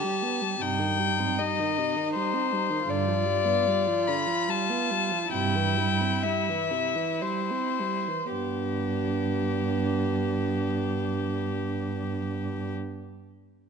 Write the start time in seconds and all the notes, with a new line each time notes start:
Already playing: G4 A5
0.04 G3
0.23 B3
0.41 G3
0.61 G2 C3 D#4 G5
0.79 D#3
0.99 G3
1.19 C4
1.38 G3 D#5
1.59 D#3
1.78 C3
1.97 D#3
2.14 G3 C5
2.33 C4
2.52 G3
2.70 D#3
2.88 G2 D3 F4 D5
3.08 F3
3.25 G3
3.45 B3
3.67 G3
3.87 F3
4.08 D3 B5
4.27 F3
4.48 G3 A5
4.70 B3
4.90 G3
5.12 F3
5.32 G2 C3 E4 G5
5.56 E3
5.77 G3
6.01 C4
6.23 G3 E5
6.49 E3
6.71 C3
6.96 E3
7.21 G3 C5
7.50 C4
7.80 G3
8.08 E3
8.33 G2 B3 D4 G4